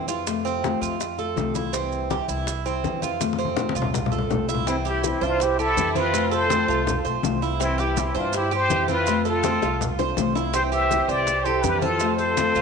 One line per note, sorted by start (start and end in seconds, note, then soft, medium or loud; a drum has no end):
0.00 0.76 F2 medium
0.08 0.26 G3 soft
0.08 0.26 C4 soft
0.08 0.26 E4 soft
0.08 0.44 F4 medium
0.08 high bongo soft
0.08 maracas medium
0.26 0.62 C3 medium
0.26 0.62 F3 medium
0.26 0.62 A3 medium
0.26 0.63 C4 medium
0.26 0.63 F4 medium
0.26 high bongo medium
0.26 high conga soft
0.26 maracas medium
0.45 0.81 C4 medium
0.45 high bongo soft
0.45 high conga soft
0.45 maracas soft
0.63 0.98 C3 medium
0.63 0.98 F3 medium
0.63 0.99 A3 medium
0.63 0.98 C4 medium
0.63 0.99 F4 medium
0.63 high bongo medium
0.63 high conga medium
0.63 maracas soft
0.81 1.33 F2 medium
0.81 1.17 F4 medium
0.81 high conga soft
0.81 maracas medium
0.99 muted nylon-string guitar stroke medium
0.99 high bongo medium
0.99 high conga soft
0.99 maracas medium
1.18 1.36 A3 soft
1.18 1.36 C4 soft
1.18 1.36 F4 soft
1.18 1.54 A4 medium
1.18 high bongo soft
1.18 high conga soft
1.18 maracas soft
1.36 2.23 C2 medium
1.36 1.54 C3 medium
1.36 1.54 F3 medium
1.36 1.54 A3 medium
1.36 1.54 C4 medium
1.36 1.53 F4 medium
1.36 high bongo soft
1.36 low bongo medium
1.36 high conga medium
1.36 maracas soft
1.54 1.73 A3 soft
1.54 1.73 C4 soft
1.54 1.73 E4 medium
1.54 1.72 F4 soft
1.54 high bongo soft
1.54 high conga medium
1.54 maracas medium
1.73 2.09 C3 medium
1.73 2.09 E3 medium
1.73 2.10 G3 medium
1.73 2.09 C4 medium
1.73 2.10 C4 medium
1.73 2.10 E4 medium
1.73 high bongo medium
1.73 high conga soft
1.73 maracas medium
1.92 high bongo soft
1.92 high conga soft
1.92 maracas soft
2.10 2.45 C3 medium
2.10 2.46 E3 medium
2.10 2.47 G3 medium
2.10 2.47 C4 medium
2.10 2.47 E4 medium
2.10 2.28 G4 medium
2.10 high bongo medium
2.10 high conga medium
2.10 maracas soft
2.28 2.80 C2 medium
2.28 2.64 E4 medium
2.28 maracas medium
2.47 muted nylon-string guitar stroke medium
2.47 high bongo medium
2.47 high conga soft
2.47 maracas medium
2.65 2.84 G3 soft
2.65 3.01 C4 medium
2.65 2.83 C4 soft
2.65 2.83 E4 soft
2.65 high bongo soft
2.65 high conga soft
2.65 maracas soft
2.84 3.70 F2 medium
2.84 3.02 C3 medium
2.84 3.02 E3 medium
2.84 3.02 G3 medium
2.84 3.02 C4 medium
2.84 3.01 E4 medium
2.84 high bongo soft
2.84 low bongo medium
2.84 high conga medium
2.84 maracas soft
3.02 3.21 G3 soft
3.02 3.20 C4 soft
3.02 3.20 E4 soft
3.02 3.38 F4 medium
3.02 high bongo soft
3.02 high conga medium
3.02 maracas medium
3.20 3.56 C3 medium
3.20 3.56 F3 medium
3.20 3.57 A3 medium
3.20 3.57 C4 medium
3.20 3.57 F4 medium
3.20 high bongo medium
3.20 high conga medium
3.20 maracas medium
3.33 high conga medium
3.39 3.74 C4 medium
3.39 high bongo soft
3.39 maracas soft
3.45 high conga medium
3.57 3.92 C3 medium
3.57 3.93 F3 medium
3.57 3.93 A3 medium
3.57 3.93 C4 medium
3.57 3.93 F4 medium
3.57 high bongo medium
3.57 low conga medium
3.57 maracas soft
3.69 high conga loud
3.75 4.27 C2 loud
3.75 4.11 F4 medium
3.75 maracas medium
3.82 low conga medium
3.94 muted nylon-string guitar stroke medium
3.94 high bongo medium
3.94 low conga medium
3.94 maracas medium
4.06 low conga medium
4.12 4.28 A3 soft
4.12 4.29 C4 soft
4.12 4.30 F4 medium
4.12 4.48 A4 medium
4.12 high bongo soft
4.12 maracas soft
4.18 low conga medium
4.29 5.16 C2 medium
4.29 4.47 C3 medium
4.29 4.48 F3 medium
4.29 4.48 A3 medium
4.29 4.48 C4 medium
4.29 4.47 F4 medium
4.29 high bongo soft
4.29 low bongo medium
4.29 low conga medium
4.29 maracas soft
4.48 4.67 A3 soft
4.48 4.66 C4 soft
4.48 4.67 E4 medium
4.48 4.66 F4 soft
4.48 high bongo soft
4.48 maracas medium
4.55 low conga medium
4.66 5.01 C3 medium
4.66 5.02 E3 medium
4.66 5.02 G3 medium
4.66 4.85 C4 medium
4.66 5.03 C4 medium
4.66 4.76 C4 medium
4.66 5.03 E4 medium
4.66 4.76 E4 medium
4.66 high bongo medium
4.66 high conga soft
4.66 maracas medium
4.85 5.02 E4 medium
4.85 5.21 G4 medium
4.85 5.07 G4 medium
4.85 high bongo soft
4.85 high conga soft
4.85 maracas soft
5.02 5.39 C3 medium
5.02 5.39 E3 medium
5.02 5.39 G3 medium
5.02 5.22 C4 medium
5.02 5.39 C4 medium
5.02 5.40 E4 medium
5.02 5.25 E4 medium
5.02 high bongo medium
5.02 high conga medium
5.02 maracas medium
5.21 5.73 C2 medium
5.21 5.41 D4 medium
5.21 5.44 F4 medium
5.21 5.57 C5 medium
5.21 high bongo soft
5.21 high conga soft
5.21 maracas soft
5.40 5.59 E4 medium
5.40 5.59 G4 medium
5.40 muted nylon-string guitar stroke medium
5.40 high bongo medium
5.40 high conga soft
5.40 maracas medium
5.58 5.77 G3 soft
5.58 5.77 C4 soft
5.58 5.76 E4 soft
5.58 5.94 E4 medium
5.58 5.95 G4 medium
5.58 5.99 A4 loud
5.58 high conga soft
5.58 maracas soft
5.77 6.63 F2 loud
5.77 5.95 C3 medium
5.77 5.95 E3 medium
5.77 5.95 G3 medium
5.77 5.95 C4 medium
5.77 5.94 E4 medium
5.77 high bongo soft
5.77 low bongo medium
5.77 high conga medium
5.77 maracas medium
5.95 6.13 G3 soft
5.95 6.31 C4 medium
5.95 6.13 C4 soft
5.95 6.13 E4 medium
5.95 6.33 F4 medium
5.95 6.33 B4 loud
5.95 high bongo soft
5.95 high conga medium
5.95 maracas soft
6.13 6.47 C3 medium
6.13 6.48 F3 medium
6.13 6.48 A3 medium
6.13 6.49 C4 medium
6.13 6.49 F4 medium
6.13 high bongo medium
6.13 maracas medium
6.31 6.50 A4 medium
6.31 7.02 A4 medium
6.31 7.02 C5 loud
6.31 high bongo soft
6.31 high conga soft
6.31 maracas soft
6.48 6.84 C3 medium
6.48 6.85 F3 medium
6.48 6.85 A3 medium
6.48 6.68 C4 medium
6.48 6.85 C4 medium
6.48 6.85 F4 medium
6.48 high bongo medium
6.48 high conga loud
6.48 maracas medium
6.68 7.03 C2 loud
6.68 7.04 F4 medium
6.68 high bongo soft
6.68 maracas soft
6.85 muted nylon-string guitar stroke medium
6.85 high bongo medium
6.85 high conga soft
6.85 low conga medium
6.85 maracas medium
7.04 7.22 B1 medium
7.04 7.22 A3 soft
7.04 7.23 C4 soft
7.04 7.22 F4 medium
7.04 7.41 C5 medium
7.04 high conga soft
7.04 maracas soft
7.22 8.09 C2 loud
7.22 7.41 C3 medium
7.22 7.41 F3 medium
7.22 7.41 A3 medium
7.22 7.40 C4 medium
7.22 7.40 F4 medium
7.22 high bongo soft
7.22 low bongo medium
7.22 high conga medium
7.22 maracas medium
7.41 7.60 A3 soft
7.41 7.59 C4 soft
7.41 7.60 E4 medium
7.41 7.59 F4 medium
7.41 high bongo soft
7.41 high conga soft
7.41 maracas soft
7.59 7.95 C3 medium
7.59 7.95 E3 medium
7.59 7.96 G3 medium
7.59 7.78 C4 medium
7.59 7.96 C4 medium
7.59 7.78 C4 medium
7.59 7.97 E4 medium
7.59 7.82 E4 medium
7.59 high bongo medium
7.59 high conga soft
7.59 maracas medium
7.78 7.97 E4 medium
7.78 8.14 G4 medium
7.78 8.00 G4 medium
7.78 high bongo soft
7.78 high conga soft
7.78 maracas soft
7.96 8.32 C3 medium
7.96 8.32 E3 medium
7.96 8.32 G3 medium
7.96 8.33 C4 medium
7.96 8.16 C4 medium
7.96 8.32 E4 medium
7.96 8.16 E4 medium
7.96 high bongo medium
7.96 high conga medium
7.96 maracas medium
8.15 8.66 G2 medium
8.15 8.33 D4 medium
8.15 8.51 C5 medium
8.15 high bongo soft
8.15 high conga soft
8.15 maracas soft
8.19 8.34 F4 medium
8.33 8.52 E4 medium
8.33 8.52 G4 medium
8.33 muted nylon-string guitar stroke medium
8.33 high bongo medium
8.33 high conga soft
8.33 maracas medium
8.51 8.68 G3 soft
8.51 8.69 C4 soft
8.51 8.69 E4 soft
8.51 8.87 G4 medium
8.51 8.87 G4 loud
8.51 high conga soft
8.51 maracas soft
8.55 8.93 C5 loud
8.68 9.56 F2 loud
8.68 8.87 C3 medium
8.68 8.87 E3 medium
8.68 8.88 G3 medium
8.68 8.88 C4 medium
8.68 8.87 E4 medium
8.68 high bongo soft
8.68 low bongo medium
8.68 high conga medium
8.68 maracas medium
8.88 9.07 G3 soft
8.88 9.24 C4 medium
8.88 9.07 C4 soft
8.88 9.06 E4 medium
8.88 9.26 F4 medium
8.88 9.27 B4 loud
8.88 high bongo soft
8.88 high conga medium
8.88 maracas soft
9.06 9.43 C3 medium
9.06 9.43 F3 medium
9.06 9.43 A3 medium
9.06 9.43 C4 medium
9.06 9.44 F4 medium
9.06 high bongo medium
9.06 maracas medium
9.25 9.96 F4 medium
9.25 9.43 A4 medium
9.25 9.96 A4 medium
9.25 high bongo soft
9.25 high conga soft
9.25 maracas soft
9.43 9.80 C3 medium
9.43 9.80 F3 medium
9.43 9.80 A3 medium
9.43 9.62 C4 medium
9.43 9.80 C4 medium
9.43 9.80 F4 medium
9.43 high bongo medium
9.43 high conga loud
9.43 maracas medium
9.62 10.13 C2 medium
9.62 9.98 F4 medium
9.62 high bongo loud
9.62 high conga soft
9.62 maracas soft
9.81 muted nylon-string guitar stroke medium
9.81 high conga soft
9.81 low conga medium
9.81 maracas medium
9.99 10.16 A3 soft
9.99 10.17 C4 soft
9.99 10.16 F4 medium
9.99 10.34 C5 medium
9.99 low bongo medium
9.99 high conga soft
9.99 maracas soft
10.17 11.03 C2 loud
10.17 10.34 C3 medium
10.17 10.35 F3 medium
10.17 10.35 A3 medium
10.17 10.35 C4 medium
10.17 10.34 F4 medium
10.17 low bongo medium
10.17 high conga medium
10.17 maracas medium
10.35 10.53 A3 soft
10.35 10.53 C4 soft
10.35 10.53 E4 medium
10.35 10.53 F4 medium
10.35 low bongo medium
10.35 maracas soft
10.54 10.90 C3 medium
10.54 10.90 E3 medium
10.54 10.90 G3 medium
10.54 10.71 C4 medium
10.54 10.90 C4 medium
10.54 10.90 E4 medium
10.54 10.62 G4 medium
10.54 10.63 C5 loud
10.54 high bongo medium
10.54 high conga soft
10.54 maracas medium
10.72 11.07 G4 medium
10.72 11.06 C5 medium
10.72 11.11 E5 loud
10.72 high bongo soft
10.72 high conga soft
10.72 maracas soft
10.91 11.26 C3 medium
10.91 11.27 E3 medium
10.91 11.26 G3 medium
10.91 11.27 C4 medium
10.91 11.27 E4 medium
10.91 high bongo medium
10.91 high conga medium
10.91 maracas medium
11.08 11.60 C2 medium
11.08 11.45 G4 medium
11.08 11.44 C5 medium
11.08 11.46 D5 loud
11.08 high bongo soft
11.08 high conga soft
11.08 maracas soft
11.27 muted nylon-string guitar stroke medium
11.27 high bongo medium
11.27 high conga soft
11.27 maracas medium
11.45 11.64 G3 soft
11.45 11.64 C4 soft
11.45 11.63 E4 soft
11.45 11.81 G4 medium
11.45 11.63 A4 medium
11.45 11.64 C5 medium
11.45 high conga soft
11.45 maracas soft
11.62 12.49 F2 medium
11.62 11.81 C3 medium
11.62 11.82 E3 medium
11.62 11.82 G3 medium
11.62 11.82 C4 medium
11.62 11.81 E4 medium
11.62 11.81 G4 medium
11.62 11.83 B4 medium
11.62 high bongo soft
11.62 low bongo medium
11.62 high conga medium
11.62 maracas medium
11.80 12.00 C4 soft
11.80 12.00 E4 soft
11.80 12.18 F4 medium
11.80 12.16 A4 loud
11.80 12.18 C5 medium
11.80 high bongo soft
11.80 high conga medium
11.80 maracas soft
11.84 12.01 G3 soft
11.99 12.36 C3 medium
11.99 12.37 F3 medium
11.99 12.37 A3 medium
11.99 12.37 C4 medium
11.99 12.37 F4 medium
11.99 high bongo medium
11.99 high conga soft
11.99 maracas medium
12.16 12.62 A4 medium
12.16 12.36 A4 medium
12.16 12.62 C5 loud
12.16 high bongo soft
12.16 high conga soft
12.16 maracas soft
12.37 12.62 C3 medium
12.37 12.62 F3 medium
12.37 12.62 A3 medium
12.37 12.55 C4 medium
12.37 12.62 C4 medium
12.37 12.62 F4 medium
12.37 high bongo medium
12.37 high conga loud
12.37 maracas medium
12.55 12.62 C2 loud
12.55 12.62 F4 medium
12.55 high bongo soft
12.55 high conga soft
12.55 maracas soft